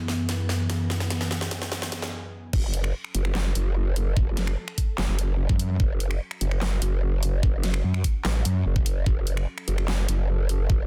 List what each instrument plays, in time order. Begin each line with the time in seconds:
Already playing: analog synth pad F#2 E3 B3 G#4
0.08 snare
0.29 snare, closed hi-hat
0.49 snare
0.70 snare, closed hi-hat
0.90 snare
1.00 snare
1.10 snare, closed hi-hat
1.21 snare
1.31 snare
1.41 snare
1.51 snare, closed hi-hat
1.62 snare
1.72 snare
1.82 snare
1.92 snare, closed hi-hat
2.02 snare
2.53 wobble bass F#1, analog synth pad F#3 C#4 A4, kick, crash
2.74 closed hi-hat
2.84 finger snap
3.04 finger snap
3.15 wobble bass F#1, closed hi-hat
3.25 finger snap
3.35 snare, clap
3.55 wobble bass F#1, closed hi-hat
3.96 closed hi-hat
4.17 wobble bass F#1, kick
4.37 snare, closed hi-hat
4.47 finger snap
4.68 finger snap
4.78 kick, closed hi-hat
4.98 wobble bass F#1, snare, clap
5.09 wobble bass F#1
5.19 closed hi-hat
5.49 wobble bass F#2, kick
5.59 closed hi-hat
5.80 wobble bass F#1, analog synth pad F#4, kick
6.00 closed hi-hat
6.11 finger snap
6.31 finger snap
6.41 wobble bass F#1, closed hi-hat
6.51 finger snap
6.61 snare, clap
6.82 wobble bass F#1, closed hi-hat
7.23 closed hi-hat
7.43 wobble bass F#1, kick
7.63 snare, closed hi-hat
7.74 finger snap
7.84 wobble bass F#2
7.94 finger snap
8.04 kick, closed hi-hat
8.25 wobble bass A1, snare, clap
8.45 wobble bass F#2, closed hi-hat
8.66 wobble bass F#1
8.76 kick
8.86 closed hi-hat
9.06 wobble bass F#1, analog synth pad A4, kick
9.27 closed hi-hat
9.37 finger snap
9.58 finger snap
9.68 wobble bass F#1, closed hi-hat
9.78 finger snap
9.88 snare, clap
10.08 wobble bass F#1, closed hi-hat
10.49 closed hi-hat
10.70 wobble bass F#1, kick